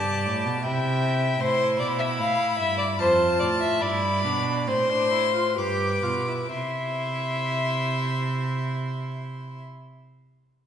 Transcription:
Already playing: cello G2, viola G4, violin D5 A5
0.26 cello A2
0.45 cello B2
0.63 cello C3, viola E4, violin E5 G5
1.40 cello A2, viola E4, violin C5 C6
1.79 cello B2, violin D5 B5
1.99 violin E5
2.18 cello A2, violin F5
2.59 cello G2, violin E5
2.78 violin D5
2.99 cello F2, viola F4, violin C5 A5
3.40 cello A2, violin D5
3.61 violin E5
3.81 cello G2, viola E4, violin D5 B5
4.24 cello B2, viola D4
4.67 cello A2, viola C4, violin C5 C6
4.89 viola D4
5.11 viola E4
5.34 viola F4
5.56 cello G2, viola G4, violin B4 D6
6.03 cello B2, viola F4
6.27 viola E4
6.51 cello C3, viola E4, violin E5 C6

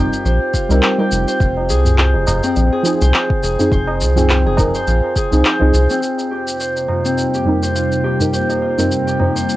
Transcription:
Already playing: analog synth bass F1, synth stab G3 C4 D#4 C5, harp C4 F4 G4 C5
0.13 shaker
0.25 analog synth bass A#1, harp C5, shaker
0.54 harp F4, kick, shaker
0.69 analog synth bass C2, synth stab G3 C4 D#4 A#4, harp C4, shaker
0.83 clap, shaker
0.98 synth stab G3 C4 D#4 A#4, harp G4
1.12 analog synth bass F1, shaker
1.28 harp C5, shaker
1.40 analog synth bass F1, kick, shaker
1.57 tabla tin
1.69 analog synth bass C2, harp G#4, shaker
1.85 tabla ge, shaker
1.98 harp C5, clap, shaker
2.14 analog synth bass F1, tabla tin
2.27 analog synth bass F1, harp F4, tabla na, tabla ge, shaker
2.43 harp C4, shaker
2.56 analog synth bass A#1, tabla tin, shaker
2.72 harp G#4
2.83 synth stab F3 C4 D#4, shaker
2.87 synth stab G#4
3.02 analog synth bass C2, harp C5, shaker
3.14 harp F4, clap, shaker
3.30 kick
3.43 analog synth bass F1, harp G#4, tabla na, tabla tin, shaker
3.58 synth stab F3 C4 D#4 G#4, tabla ge, shaker
3.72 analog synth bass F1, harp C5, kick, shaker
3.87 tabla na, tabla tin
4.00 analog synth bass C2, harp F4, shaker
4.16 synth stab F3 C4 D#4 G#4, harp C4, tabla ge, shaker
4.30 clap, shaker
4.45 analog synth bass F1, harp G#4, tabla tin
4.57 analog synth bass F1, synth stab F3 C4 D#4 A#4, kick, tabla na, tabla ge, shaker
4.75 harp C5, shaker
4.87 analog synth bass A#1, harp F4, shaker
5.04 tabla na
5.16 harp G#4, kick, shaker
5.31 analog synth bass C2, synth stab F3 C4 D#4 G#4, tabla na, shaker
5.45 harp C5, clap, shaker
5.59 analog synth bass C2, synth stab F3 C4 D#4 G#4
5.73 analog synth bass C2, harp F4, shaker
5.90 harp C4, shaker
6.02 ambient pad F2 C3 G3 A#3 D#4, harp F4, shaker
6.18 tabla tin, shaker
6.31 harp G4
6.48 shaker
6.60 harp C5, shaker
6.76 tabla tin, shaker
6.88 harp F4, tabla na, tabla ge
7.05 harp C4, shaker
7.17 tabla tin, shaker
7.34 harp G4, shaker
7.44 synth stab F2 G3 C4 D#4
7.49 synth stab A#4
7.63 harp C5, shaker
7.75 harp F4, shaker
7.92 shaker
8.04 harp G4, tabla na, tabla tin
8.19 synth stab F2 G3 C4 D#4 A#4, tabla ge, shaker
8.33 harp C5, shaker
8.49 tabla na, tabla tin, shaker
8.61 harp F4
8.77 synth stab F2 G3 C4 D#4 A#4, harp C4, tabla ge, shaker
8.92 shaker
9.07 harp G4, tabla tin, shaker
9.19 synth stab F2 G3 C4 D#4 C5, tabla na, tabla ge
9.36 harp C5, shaker
9.49 harp F4, shaker

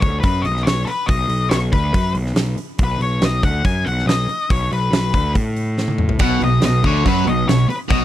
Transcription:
0.00 picked electric bass D2, lead electric guitar C#5, kick, open hi-hat
0.20 picked electric bass F#2, lead electric guitar B4, kick, open hi-hat
0.42 lead electric guitar D#5, open hi-hat
0.46 picked electric bass B1
0.57 snare
0.63 picked electric bass B1, lead electric guitar C#5, snare, open hi-hat
0.85 lead electric guitar A4 B4, muted picked electric bass stroke, open hi-hat
1.06 picked electric bass B1, lead electric guitar D#5, kick, open hi-hat
1.29 picked electric bass B1, open hi-hat
1.49 picked electric bass B1, lead electric guitar C#5, snare, open hi-hat
1.72 picked electric bass D2, lead electric guitar B4, kick, open hi-hat
1.94 picked electric bass F#2, kick, open hi-hat
2.15 picked electric bass B1, open hi-hat
2.26 snare
2.35 picked electric bass B1, snare, open hi-hat
2.57 muted picked electric bass stroke, open hi-hat
2.79 picked electric bass B1, kick, open hi-hat
2.84 lead electric guitar B4
2.99 picked electric bass B1, lead electric guitar C#5, open hi-hat
3.22 picked electric bass B1, lead electric guitar D#5, snare, open hi-hat
3.43 picked electric bass D2, lead electric guitar F#5, kick, open hi-hat
3.65 picked electric bass F#2, lead electric guitar G#5, kick, open hi-hat
3.85 picked electric bass B1, lead electric guitar F#5, open hi-hat
3.99 snare
4.06 picked electric bass B1, lead electric guitar D#5, snare, open hi-hat
4.29 muted picked electric bass stroke, open hi-hat
4.50 picked electric bass B1, lead electric guitar C#5, kick, open hi-hat
4.72 picked electric bass B1, lead electric guitar B4, open hi-hat
4.92 picked electric bass B1, snare, open hi-hat
5.13 picked electric bass D2, kick, open hi-hat
5.35 picked electric bass A2, kick, open hi-hat
5.56 open hi-hat
5.78 snare
5.88 high tom
5.98 mid tom
6.09 floor tom
6.19 picked electric bass B1, overdriven electric guitar B2, lead electric guitar F#5, kick, open hi-hat, crash
6.40 picked electric bass B1, overdriven electric guitar B2, lead electric guitar D#5, open hi-hat
6.61 picked electric bass B1, overdriven electric guitar B2, snare, open hi-hat
6.65 lead electric guitar D#5
6.83 picked electric bass D2, overdriven electric guitar D3, lead electric guitar C#5, kick, open hi-hat
7.06 picked electric bass F#2, overdriven electric guitar F#3, lead electric guitar B4, kick, open hi-hat
7.25 picked electric bass B1, overdriven electric guitar B2, lead electric guitar D#5, open hi-hat
7.48 picked electric bass B1, overdriven electric guitar B2, lead electric guitar C#5, snare, open hi-hat
7.68 lead electric guitar B4, muted picked electric bass stroke, muted overdriven electric guitar stroke, open hi-hat
7.89 picked electric bass B1, overdriven electric guitar B2, lead electric guitar D#5, kick, open hi-hat

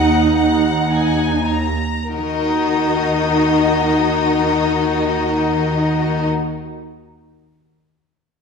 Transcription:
Already playing: cello section D#2, double bass section D#2, viola section D#4, violin section D#5 F#5
0.34 violin section F#5
0.92 violin section G#5
1.50 violin section A#5
2.12 double bass section D#2, cello section D#3, viola section D#4, violin section F#4 A#4 D#5

